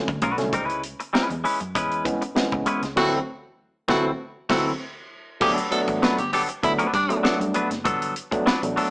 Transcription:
0.08 picked electric bass D2, muted clean electric guitar stroke, kick, closed hi-hat
0.22 picked electric bass B1, tine electric piano A3 C#4, clean electric guitar A3 D4 F#4 B4, kick, closed hi-hat
0.38 picked electric bass C2, tine electric piano D3 F#3 A3 C#4, muted clean electric guitar stroke, snare, closed hi-hat
0.53 picked electric bass C#2, clean electric guitar G3 C4 D#4 A#4, kick, closed hi-hat
0.65 clean electric guitar G#3 C#4 E4 B4
0.70 closed hi-hat
0.84 closed hi-hat
1.00 muted clean electric guitar stroke, closed hi-hat
1.13 clean electric guitar G#3 C#4 E4 B4, snare
1.30 picked electric bass E2, muted clean electric guitar stroke, closed hi-hat
1.44 clean electric guitar G#3 C#4 E4 B4, open hi-hat
1.60 picked electric bass F#2, muted clean electric guitar stroke, closed hi-hat
1.75 picked electric bass E2, clean electric guitar G#3 C#4 E4 B4, kick, closed hi-hat
1.92 closed hi-hat
2.05 tine electric piano E3 G#3 B3 C#4, kick, closed hi-hat
2.22 muted clean electric guitar stroke, closed hi-hat
2.35 tine electric piano E3 G#3 B3 C#4, muted picked electric bass stroke, muted clean electric guitar stroke, snare
2.52 picked electric bass C#2, muted clean electric guitar stroke, kick
2.66 clean electric guitar G#3 C#4 E4 B4, closed hi-hat
2.82 picked electric bass C#2, muted clean electric guitar stroke, snare, closed hi-hat
2.96 picked electric bass D2, tine electric piano E3 F#3 A3 C4, clean electric guitar F#3 C4 E4 A4, tenor saxophone F#4, kick, snare, crash
3.88 picked electric bass D2, tine electric piano E3 F#3 A3 C4, clean electric guitar F#3 C4 E4 A4, tenor saxophone F#4, kick, snare
4.49 picked electric bass D2, tine electric piano E3 F#3 A3 C4, clean electric guitar F#3 C4 E4 A4, tenor saxophone F#4, kick, snare, crash
5.41 picked electric bass G1, clean electric guitar F3 A#3 C#4 G#4, tine electric piano F#3 A3 B3 D4, tenor saxophone G4, kick, crash
5.53 clean electric guitar F#3 B3 D4 A4
5.58 closed hi-hat
5.71 tine electric piano F#3 A3 B3 D4, tenor saxophone A4, closed hi-hat
5.88 picked electric bass A1, muted clean electric guitar stroke, kick, closed hi-hat
6.02 clean electric guitar F#3 B3 D4 B4, muted picked electric bass stroke, snare
6.18 picked electric bass G1, tenor saxophone G4, muted clean electric guitar stroke, closed hi-hat
6.33 clean electric guitar F#3 B3 D4 A4, tenor saxophone G4, open hi-hat
6.49 muted clean electric guitar stroke, closed hi-hat
6.63 picked electric bass D2, tine electric piano F#3 A3 B3 D4, tenor saxophone E4, muted clean electric guitar stroke, kick, closed hi-hat
6.79 clean electric guitar F#3 B3 D4 B4, closed hi-hat
6.93 picked electric bass G2, tenor saxophone D4, muted clean electric guitar stroke, kick, closed hi-hat
7.09 tine electric piano F#3 A3 B3 C#4, muted clean electric guitar stroke, closed hi-hat
7.17 tine electric piano D4
7.23 clean electric guitar F#3 B3 D4 A4, snare
7.40 picked electric bass G2, muted clean electric guitar stroke, closed hi-hat
7.54 clean electric guitar F#3 B3 D4 B4, closed hi-hat
7.70 picked electric bass F#1, muted clean electric guitar stroke, snare, closed hi-hat
7.85 picked electric bass G1, clean electric guitar F#3 B3 D4 A4, kick, closed hi-hat
8.02 closed hi-hat
8.16 closed hi-hat
8.31 tine electric piano F#3 A3 B3 D4, muted clean electric guitar stroke, muted picked electric bass stroke, kick, closed hi-hat
8.46 clean electric guitar F#3 B3 D4 B4, snare
8.62 picked electric bass A1, tine electric piano F#3 A3 B3 D4, muted clean electric guitar stroke, closed hi-hat
8.76 clean electric guitar F#3 B3 D4 A4, open hi-hat

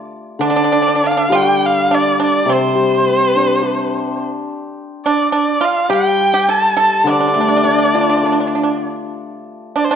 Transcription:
Already playing: hammered dulcimer A4
0.39 hammered dulcimer D3, pipa D4
0.44 erhu D5
0.50 pipa D4
0.56 pipa D4
0.64 pipa D4
0.72 pipa D4
0.82 pipa D4
0.88 pipa D4
0.95 pipa D4
1.03 pipa D4, erhu F5
1.11 pipa D4
1.17 pipa D4
1.30 hammered dulcimer G3, pipa G4
1.35 erhu G5
1.66 erhu F5
1.91 pipa D4, erhu D5
2.20 pipa D4
2.25 erhu D5
2.46 hammered dulcimer C3, pipa C4
2.53 erhu C5
2.75 hammered dulcimer G3
3.08 hammered dulcimer C4
3.35 hammered dulcimer D4
3.63 hammered dulcimer G4
5.06 pipa D4, erhu D5
5.32 pipa D4, erhu D5
5.61 pipa F4
5.65 erhu F5
5.89 hammered dulcimer G3, pipa G4
5.93 erhu G5
6.34 pipa G4
6.49 pipa A4, erhu A5
6.77 pipa A4
6.81 erhu A5
7.04 hammered dulcimer D3, pipa D4
7.09 pipa D4, erhu D5
7.20 pipa D4
7.28 pipa D4
7.34 hammered dulcimer A3, pipa D4
7.40 pipa D4
7.48 pipa D4
7.56 pipa D4
7.64 pipa D4, hammered dulcimer D4
7.71 pipa D4
7.79 pipa D4
7.85 pipa D4
7.94 pipa D4, hammered dulcimer F4
8.01 pipa D4
8.10 pipa D4
8.17 pipa D4
8.23 pipa D4, hammered dulcimer A4
8.32 pipa D4
8.40 pipa D4
8.47 pipa D4
8.55 pipa D4
8.63 pipa D4
9.76 pipa D4, erhu D5
9.84 erhu C5
9.91 pipa D4

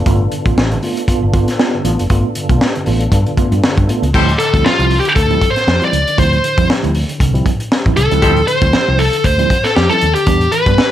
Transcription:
Already playing: tonewheel organ B3 D4 F4 A4
0.06 fingered electric bass G1, tine electric piano A3 B3 F4, kick, closed hi-hat
0.32 tine electric piano G2 D3, closed hi-hat
0.45 fingered electric bass A1, tine electric piano A3 B3 F4, kick, closed hi-hat
0.57 fingered electric bass A1, tine electric piano B3 F4, snare
0.71 tine electric piano G2 D3, closed hi-hat
0.82 tine electric piano A3 B3 F4, open hi-hat
0.97 closed hi-hat
1.08 tine electric piano B3 F4, muted fingered electric bass stroke, kick, closed hi-hat
1.22 fingered electric bass G1, tine electric piano G2 D3
1.33 tine electric piano B3 F4, kick, closed hi-hat
1.48 snare, closed hi-hat
1.59 tine electric piano B3 F4, snare
1.74 tine electric piano G2 D3
1.85 fingered electric bass A1, tine electric piano B3 F4, closed hi-hat
1.99 fingered electric bass F#1, closed hi-hat
2.10 fingered electric bass G1, tine electric piano A3 B3 F4, kick, closed hi-hat
2.35 tine electric piano G2 D3, closed hi-hat
2.49 fingered electric bass B1, tine electric piano A3 B3 F4, kick, closed hi-hat
2.61 tine electric piano B3 F4, snare
2.75 tine electric piano G2 D3, closed hi-hat
2.86 fingered electric bass A1, tine electric piano A3 B3 F4, open hi-hat
3.00 closed hi-hat
3.12 fingered electric bass G2, tine electric piano B3 F4, kick, closed hi-hat
3.26 tine electric piano G2 D3, closed hi-hat
3.37 tine electric piano A3 B3 F4, muted fingered electric bass stroke, kick, closed hi-hat
3.52 fingered electric bass G2, closed hi-hat
3.64 tine electric piano G2 D3, snare
3.77 fingered electric bass G2, kick, closed hi-hat
3.89 tine electric piano A3 B3 F4, closed hi-hat
4.02 fingered electric bass C#2, tine electric piano B3 F4, closed hi-hat
4.14 fingered electric bass D2, tine electric piano F3 G3 C4 E4, horn section G4 A4 C5, kick, crash
4.29 closed hi-hat
4.39 tine electric piano D3, lead electric guitar A4, closed hi-hat
4.54 fingered electric bass D2, tine electric piano F3 G3 C4 E4, kick, closed hi-hat
4.65 lead electric guitar F4, muted fingered electric bass stroke, snare
4.79 fingered electric bass C2, tine electric piano F3 G3 C4 E4, closed hi-hat
4.90 open hi-hat
4.99 lead electric guitar G4
5.05 tine electric piano D3, closed hi-hat
5.16 fingered electric bass D2, tine electric piano D3, lead electric guitar A4, kick, closed hi-hat
5.30 tine electric piano F3 G3 C4 E4, closed hi-hat
5.41 tine electric piano C4 E4, kick, closed hi-hat
5.50 lead electric guitar C5
5.56 snare, closed hi-hat
5.67 fingered electric bass F2, snare
5.81 tine electric piano F3 G3 C4 E4, lead electric guitar D5, closed hi-hat
5.93 fingered electric bass C#2, closed hi-hat
6.07 tine electric piano D3, closed hi-hat
6.18 fingered electric bass D2, tine electric piano F3 G3 C4 E4, lead electric guitar C5, kick, closed hi-hat
6.33 closed hi-hat
6.44 tine electric piano D3, closed hi-hat
6.57 fingered electric bass F2, tine electric piano F3 G3 C4 E4, kick, closed hi-hat
6.70 muted fingered electric bass stroke, snare
6.83 fingered electric bass D2, tine electric piano F3 G3 C4 E4, closed hi-hat
6.95 open hi-hat
7.09 tine electric piano D3, closed hi-hat
7.20 fingered electric bass C2, tine electric piano D3, kick, closed hi-hat
7.34 tine electric piano F3 G3 C4 E4, closed hi-hat
7.45 tine electric piano C4 E4, kick, closed hi-hat
7.60 closed hi-hat
7.72 snare
7.85 fingered electric bass A1, tine electric piano F3 G3 C4 E4, kick, closed hi-hat
7.97 fingered electric bass C2, tine electric piano D3, lead electric guitar A4, closed hi-hat
8.11 fingered electric bass C#2, tine electric piano F3 G3 C4 E4, closed hi-hat
8.21 fingered electric bass D2, tine electric piano F3 G3 C4 E4, horn section G4 A4 C5, kick, closed hi-hat
8.37 closed hi-hat
8.48 tine electric piano D3, lead electric guitar C5, closed hi-hat
8.61 fingered electric bass D2, tine electric piano F3 G3 C4 E4, kick, closed hi-hat
8.73 muted fingered electric bass stroke, snare
8.88 fingered electric bass C2, tine electric piano F3 G3 C4 E4
8.99 lead electric guitar A4, open hi-hat
9.13 tine electric piano D3, closed hi-hat
9.24 fingered electric bass D2, tine electric piano D3, lead electric guitar C5, kick, closed hi-hat
9.38 tine electric piano F3 G3 C4 E4, closed hi-hat
9.50 tine electric piano C4 E4, kick, closed hi-hat
9.64 lead electric guitar A4, snare, closed hi-hat
9.75 fingered electric bass F2, lead electric guitar G4, snare
9.89 tine electric piano F3 G3 C4 E4, lead electric guitar A4, closed hi-hat
10.01 fingered electric bass D#2, closed hi-hat
10.15 tine electric piano D3, lead electric guitar G4, closed hi-hat
10.26 fingered electric bass E2, tine electric piano G3 B3 D4, kick, closed hi-hat
10.41 closed hi-hat
10.52 tine electric piano E3, lead electric guitar B4, closed hi-hat
10.66 fingered electric bass G2, tine electric piano G3 B3 D4, kick, closed hi-hat
10.78 muted fingered electric bass stroke, snare

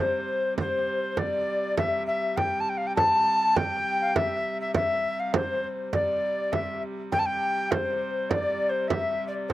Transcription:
Already playing: hurdy-gurdy C3 G3
0.00 recorder C5
0.28 frame drum
0.58 recorder C5, frame drum
0.87 frame drum
1.04 recorder C5
1.17 hurdy-gurdy C3 G3, recorder D5, frame drum
1.62 recorder D5
1.77 recorder E5, frame drum
2.07 recorder E5, frame drum
2.37 recorder G5, frame drum
2.60 recorder A5
2.69 recorder G5
2.77 recorder F5
2.87 recorder G5
2.96 recorder A5, frame drum
3.27 frame drum
3.41 recorder A5
3.56 recorder G5, frame drum
4.01 recorder F5
4.16 recorder E5, frame drum
4.60 recorder E5
4.75 recorder E5, frame drum
5.04 frame drum
5.20 recorder F5
5.33 recorder C5, frame drum
5.64 frame drum
5.93 hurdy-gurdy C3 G3, recorder D5, frame drum
6.52 recorder E5, frame drum
6.83 frame drum
7.12 recorder G5, frame drum
7.19 recorder A5
7.26 recorder G5
7.71 recorder C5, frame drum
8.01 frame drum
8.30 recorder D5, frame drum
8.69 recorder C5
8.88 recorder E5, frame drum
9.28 recorder D5
9.48 recorder C5, frame drum

